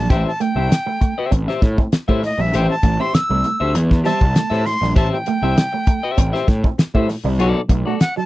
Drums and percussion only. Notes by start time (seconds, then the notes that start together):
0.10 kick, closed hi-hat
0.40 closed hi-hat
0.72 snare, closed hi-hat
1.01 kick, closed hi-hat
1.32 kick, closed hi-hat
1.48 snare
1.62 kick, snare, closed hi-hat
1.78 kick
1.92 snare, closed hi-hat
2.09 kick
2.23 snare, open hi-hat
2.53 closed hi-hat
2.83 kick, closed hi-hat
3.14 snare, closed hi-hat
3.44 closed hi-hat
3.75 closed hi-hat
3.91 kick, snare
4.06 snare, closed hi-hat
4.21 kick
4.36 snare, closed hi-hat
4.52 snare
4.66 snare, open hi-hat
4.83 snare
4.96 kick, closed hi-hat
5.26 closed hi-hat
5.57 snare, closed hi-hat
5.87 kick, closed hi-hat
6.18 kick, closed hi-hat
6.34 snare
6.48 kick, snare, closed hi-hat
6.64 kick
6.79 snare, closed hi-hat
6.95 kick
7.09 snare, open hi-hat
7.40 closed hi-hat
7.69 kick, closed hi-hat
8.00 snare, closed hi-hat